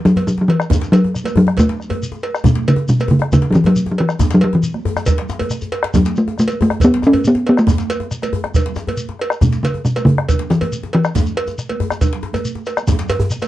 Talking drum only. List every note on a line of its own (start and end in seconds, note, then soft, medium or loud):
0.05 0.25 F#3 medium
0.27 0.41 F#3 medium
0.41 0.50 F#3 medium
0.48 0.94 E3 medium
0.92 1.36 F#3 medium
1.37 1.47 F#3 medium
1.59 2.20 A3 loud
2.45 2.70 B2 medium
2.68 2.91 C#3 medium
2.89 3.12 B2 medium
3.11 3.32 C#3 medium
3.33 3.52 C#3 medium
3.51 3.57 F#3 medium
3.55 3.68 E3 medium
3.67 3.91 F#3 loud
3.91 4.02 F#3 medium
4.00 4.36 E3 medium
4.34 4.43 F#3 medium
4.44 4.56 F#3 medium
4.55 5.74 E3 medium
5.95 6.19 F#3 medium
6.18 6.39 A3 medium
6.40 6.59 A3 medium
6.62 6.86 A3 medium
6.84 7.08 B3 loud
7.07 7.29 C#4 medium
7.28 7.48 B3 medium
7.49 7.53 B3 medium
7.59 8.84 A3 medium
9.42 9.65 B2 medium
9.63 9.86 C#3 medium
9.85 10.04 B2 medium
10.05 10.46 C#3 medium
10.51 10.91 E3 loud
10.95 12.41 E3 medium